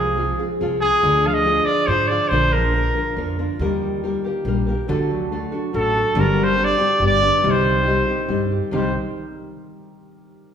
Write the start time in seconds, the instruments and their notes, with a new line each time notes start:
Already playing: upright bass C2, nylon-string guitar C3 F3 C4 F4 G#4, harp F3, trumpet G#4
0.00 harp G#3
0.17 nylon-string guitar F3 C4 F4 G#4
0.39 nylon-string guitar C4 F4 G#4, harp G#4
0.61 upright bass C2, nylon-string guitar F3 C4 F4 G#4
0.80 trumpet G#4, harp G#4
1.03 upright bass D2, nylon-string guitar D3 F3 D4 F4 G#4, harp D3
1.24 harp F3, trumpet F5
1.34 trumpet D#5
1.45 nylon-string guitar F3 D4 F4 G#4
1.65 harp F4, trumpet D5
1.87 upright bass G#2, nylon-string guitar F3 D4 F4 G#4, trumpet C5
2.08 nylon-string guitar F4 G#4, harp F4, trumpet D5
2.12 nylon-string guitar D4
2.28 upright bass A#1, nylon-string guitar A#2 D3, harp D3, trumpet C5
2.32 nylon-string guitar F3 A#3 D4 A#4
2.53 harp F3, trumpet A#4
2.73 nylon-string guitar F3 A#3 D4 A#4
2.95 nylon-string guitar F3 A#3 D4 A#4, harp F4
3.16 upright bass F2, nylon-string guitar F3 A#3 D4 A#4
3.39 nylon-string guitar F3 A#3 D4 A#4, harp F4
3.59 upright bass D#2, harp D#3, nylon-string guitar D#3 G3 A#3 G4 A#4
3.82 harp G3
4.03 nylon-string guitar G3 A#3 G4 A#4
4.24 nylon-string guitar A#3 G4 A#4, harp G4
4.45 upright bass A#1, nylon-string guitar G3 A#3 G4 A#4
4.67 nylon-string guitar A#3 G4 A#4, harp G4
4.88 upright bass D2, harp D3, nylon-string guitar D3 A3 D4 F#4 A4
5.10 harp F#3
5.32 nylon-string guitar A3 D4 F#4 A4
5.52 nylon-string guitar D4 F#4 A4, harp F#4
5.73 upright bass A1, nylon-string guitar A3 D4 F#4 A4, trumpet A4
5.95 nylon-string guitar D4 F#4 A4, harp F#4
6.15 upright bass G1, nylon-string guitar G2 D3 G3 C4 D4 G4, harp D3
6.20 trumpet A#4
6.38 harp G3
6.44 trumpet C5
6.57 nylon-string guitar G3 C4 D4 G4
6.64 trumpet D5
6.78 nylon-string guitar G3 C4 D4 G4, harp G4
7.00 upright bass G1, nylon-string guitar G3 B3 D4 G4
7.06 trumpet D5
7.22 nylon-string guitar G3 B3 D4 G4, harp G4
7.43 upright bass C2, nylon-string guitar C3 G3 C4 D#4 G4, harp D#3
7.50 trumpet C5
7.67 harp G3
7.85 nylon-string guitar G3 C4 D#4 G4
8.08 nylon-string guitar C4 D#4 G4, harp G4
8.29 upright bass G2, nylon-string guitar G3 C4 D#4 G4
8.52 harp G4
8.71 upright bass C2, nylon-string guitar C3 G3 C4 D#4 G4, harp D#3 G3 C4 G4
8.75 trumpet C5